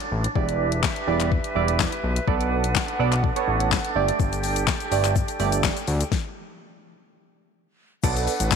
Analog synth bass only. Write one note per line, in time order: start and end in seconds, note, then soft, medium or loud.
0.12 0.27 A1 loud
0.36 0.83 E1 loud
1.07 1.39 E1 medium
1.55 1.87 E1 medium
2.04 2.19 B1 loud
2.28 2.75 B1 loud
3.00 3.31 B1 medium
3.48 3.79 A1 medium
3.96 4.11 G1 loud
4.20 4.67 G1 loud
4.92 5.23 G1 medium
5.40 5.71 G1 medium
5.88 6.03 D2 loud
8.04 8.28 B1 loud
8.40 8.56 A1 loud